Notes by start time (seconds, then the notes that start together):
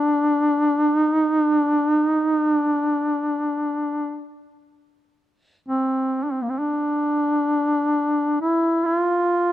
Already playing: D4
0.97 D#4
1.46 D4
1.98 D#4
2.47 D4
5.68 C4
6.24 D4
6.32 C4
6.42 A#3
6.50 C4
6.59 D4
8.42 E4
8.86 F4